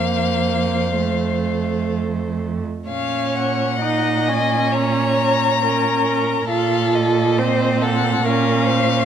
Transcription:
Already playing: cello F2, viola A#3, violin C5 F5
0.97 viola A3
2.88 cello A#2, viola C#4, violin C#5 F5
3.36 violin F#5
3.81 viola D#4, violin D#5
4.28 viola C#4, violin G#5
4.72 violin C#5 A#5
5.63 viola C#4, violin A#4
6.49 cello A#2, viola F4, violin A4 F5
6.95 violin D#5
7.38 viola C4, violin C5
7.82 violin A4 F#5
8.23 cello A#2, viola C#4, violin A#4 F5
8.66 violin C5

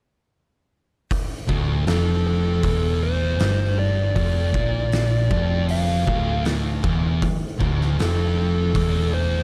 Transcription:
1.09 string machine D3 E3 A3, kick, open hi-hat
1.47 picked electric bass D1, distorted electric guitar D2, kick
1.87 picked electric bass F1, distorted electric guitar F2, lead electric guitar A4, snare, open hi-hat
2.27 lead electric guitar A4
2.63 picked electric bass E1, distorted electric guitar E2, kick, open hi-hat
3.03 lead electric guitar C5
3.39 picked electric bass G1, distorted electric guitar G2, snare, open hi-hat
3.79 lead electric guitar D5
4.15 picked electric bass F1, distorted electric guitar F2, lead electric guitar D5, kick, open hi-hat
4.54 picked electric bass A#1, distorted electric guitar A#2, kick
4.92 snare, open hi-hat
5.31 picked electric bass F1, distorted electric guitar F2, kick
5.69 lead electric guitar F5, open hi-hat
6.07 picked electric bass D1, distorted electric guitar D2, kick
6.45 snare, open hi-hat
6.84 picked electric bass E1, distorted electric guitar E2, kick
7.22 kick, open hi-hat
7.59 picked electric bass D1, distorted electric guitar D2, kick
7.81 snare
7.98 picked electric bass F1, distorted electric guitar F2, lead electric guitar A4, snare, open hi-hat
8.38 lead electric guitar A4
8.75 picked electric bass E1, distorted electric guitar E2, kick, open hi-hat
9.14 lead electric guitar C5

